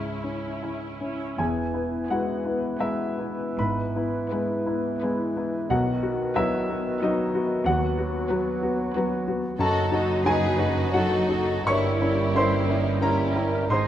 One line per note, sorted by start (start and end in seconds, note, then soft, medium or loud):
0.00 1.34 C#2 soft
0.00 1.41 G#2 soft
0.00 0.51 C#3 soft
0.00 0.47 G#3 soft
0.00 0.22 C#4 soft
0.00 0.22 E4 soft
0.00 0.98 E4 soft
0.00 0.59 C#5 soft
0.24 0.86 C#4 soft
0.24 1.00 C#4 soft
0.24 0.99 E4 soft
0.62 1.27 C#3 soft
0.62 1.24 E4 soft
1.01 1.38 C#4 soft
1.01 1.38 E4 soft
1.37 1.96 E1 soft
1.37 1.73 E2 soft
1.37 1.95 E2 soft
1.37 5.71 E3 soft
1.37 5.66 E3 soft
1.37 5.66 B3 soft
1.37 5.66 E4 soft
1.37 2.07 G#4 soft
1.37 5.66 B4 soft
1.37 2.06 G#5 medium
1.74 2.06 B3 soft
1.74 2.06 E4 soft
2.10 2.41 G#3 soft
2.10 2.62 B3 soft
2.10 2.42 B3 soft
2.10 2.62 E4 soft
2.10 2.42 E4 soft
2.10 2.77 F#4 soft
2.10 2.62 B4 soft
2.10 2.76 F#5 medium
2.45 2.77 B3 soft
2.45 2.77 E4 soft
2.80 3.15 G#3 soft
2.80 3.39 B3 soft
2.80 3.15 B3 soft
2.80 3.15 E4 soft
2.80 3.40 E4 soft
2.80 3.39 B4 soft
2.80 3.55 E5 medium
3.18 3.54 B3 soft
3.18 3.55 E4 soft
3.58 4.16 G#1 medium
3.58 4.16 G#2 medium
3.58 3.95 G#2 soft
3.58 5.33 B4 soft
3.58 5.32 B5 medium
3.96 4.27 B3 soft
3.96 4.28 E4 soft
4.30 4.63 G#3 soft
4.30 4.83 B3 soft
4.30 4.63 B3 soft
4.30 4.84 E4 soft
4.30 4.63 E4 soft
4.30 4.84 B4 soft
4.66 4.98 B3 soft
4.66 4.98 E4 soft
5.01 5.34 G#3 soft
5.01 5.53 B3 soft
5.01 5.34 B3 soft
5.01 5.53 E4 soft
5.01 5.34 E4 soft
5.01 5.52 B4 soft
5.37 5.67 B3 soft
5.37 5.67 E4 soft
5.70 6.02 B1 soft
5.70 6.22 B1 medium
5.70 6.22 B2 medium
5.70 7.67 D#3 medium
5.70 7.66 D#3 soft
5.70 9.44 B3 soft
5.70 9.43 F#4 medium
5.70 6.01 F#4 soft
5.70 9.28 B4 soft
5.70 6.31 F#5 medium
6.02 6.32 B3 soft
6.02 6.32 F#4 soft
6.35 6.65 F#3 soft
6.35 6.85 B3 soft
6.35 6.65 B3 soft
6.35 6.98 E4 soft
6.35 6.85 F#4 soft
6.35 6.66 F#4 soft
6.35 6.85 B4 soft
6.35 6.98 E5 medium
6.69 6.99 B3 soft
6.69 6.99 F#4 soft
7.01 7.31 F#3 soft
7.01 7.50 B3 medium
7.01 7.31 B3 soft
7.01 7.63 D#4 soft
7.01 7.50 F#4 soft
7.01 7.31 F#4 soft
7.01 7.49 B4 soft
7.01 7.62 D#5 medium
7.34 7.63 B3 soft
7.34 7.63 F#4 medium
7.66 8.16 D#2 medium
7.66 7.97 D#2 soft
7.66 8.17 D#2 medium
7.66 9.43 F#3 medium
7.66 9.44 F#3 medium
7.66 7.97 F#4 soft
7.66 9.24 F#5 medium
7.97 8.26 B3 soft
7.97 8.27 F#4 soft
8.29 8.59 F#3 soft
8.29 8.59 B3 soft
8.29 8.79 B3 medium
8.29 8.78 F#4 medium
8.29 8.59 F#4 soft
8.29 8.78 B4 soft
8.62 8.92 B3 soft
8.62 8.92 F#4 soft
8.95 9.24 F#3 soft
8.95 9.43 B3 soft
8.95 9.24 B3 soft
8.95 9.43 F#4 medium
8.95 9.25 F#4 medium
8.95 9.43 B4 medium
9.27 9.56 B3 soft
9.27 9.57 F#4 soft
9.59 11.62 F#1 medium
9.59 9.91 F#2 medium
9.59 11.62 F#2 medium
9.59 9.92 F#3 medium
9.59 10.89 F#3 medium
9.59 10.89 D#4 medium
9.59 10.21 F#4 medium
9.59 9.90 F#4 medium
9.59 9.92 F#4 medium
9.59 10.22 A4 medium
9.59 9.92 D#5 medium
9.59 10.22 A5 medium
9.92 10.24 F#3 soft
9.92 10.22 D#4 soft
9.92 10.25 D#4 medium
9.92 10.22 F#4 medium
9.92 10.25 F#4 medium
9.92 10.25 D#5 soft
10.25 10.58 F#3 soft
10.25 10.55 F#3 soft
10.25 10.55 D#4 soft
10.25 10.91 D#4 medium
10.25 10.56 F#4 medium
10.25 10.59 F#4 soft
10.25 10.58 G#4 medium
10.25 10.89 G#4 medium
10.25 10.93 B4 soft
10.25 10.58 D#5 soft
10.25 10.89 G#5 medium
10.58 10.91 F#3 soft
10.58 10.89 D#4 soft
10.58 10.89 F#4 soft
10.58 11.66 F#4 medium
10.58 10.92 F#4 soft
10.58 10.92 D#5 soft
10.92 11.27 F#3 soft
10.92 11.65 F#3 medium
10.92 11.25 F#3 soft
10.92 11.64 D#4 medium
10.92 11.64 D#4 soft
10.92 11.25 D#4 soft
10.92 11.28 F#4 soft
10.92 11.26 F#4 soft
10.92 11.27 A4 medium
10.92 11.28 D#5 soft
10.92 11.62 F#5 medium
11.28 11.65 F#3 soft
11.28 11.62 D#4 soft
11.28 11.65 F#4 soft
11.28 11.62 F#4 soft
11.28 11.65 A4 soft
11.28 11.65 D#5 soft
11.66 13.70 G1 medium
11.66 12.00 G2 medium
11.66 13.70 G2 medium
11.66 12.00 G3 soft
11.66 12.99 A#3 medium
11.66 12.01 E4 medium
11.66 13.02 E4 soft
11.66 12.34 E4 medium
11.66 13.01 G4 soft
11.66 12.01 A#4 medium
11.66 12.32 C#5 medium
11.66 12.00 E5 medium
11.66 12.32 C#6 medium
12.01 12.34 G3 soft
12.01 12.32 C#4 soft
12.01 12.32 E4 soft
12.01 13.00 E4 soft
12.01 12.35 A#4 medium
12.01 12.34 E5 soft
12.35 12.68 G3 soft
12.35 12.65 A#3 soft
12.35 12.65 C#4 soft
12.35 12.65 E4 soft
12.35 12.68 E4 soft
12.35 12.67 A#4 soft
12.35 12.99 C5 medium
12.35 12.68 E5 soft
12.35 12.98 C6 medium
12.68 13.01 G3 soft
12.68 12.98 C#4 soft
12.68 13.02 D#4 soft
12.68 12.98 E4 soft
12.68 13.01 A#4 soft
12.68 13.01 E5 soft
13.01 13.35 G3 soft
13.01 13.32 A#3 soft
13.01 13.69 A#3 medium
13.01 13.32 C#4 soft
13.01 13.70 C#4 soft
13.01 13.69 E4 soft
13.01 13.33 E4 soft
13.01 13.69 E4 medium
13.01 13.69 G4 soft
13.01 13.35 A#4 soft
13.01 13.67 A#4 soft
13.01 13.35 E5 soft
13.01 13.66 A#5 medium
13.35 13.69 G3 soft
13.35 13.67 C#4 soft
13.35 13.67 E4 soft
13.35 13.70 A#4 soft
13.35 13.69 E5 soft
13.69 13.88 G#1 medium
13.69 13.88 G#2 soft
13.69 13.88 G#2 medium
13.69 13.88 G#3 soft
13.69 13.88 D#4 soft
13.69 13.88 G#4 soft
13.69 13.88 C5 medium
13.69 13.88 D#5 soft
13.69 13.88 C6 medium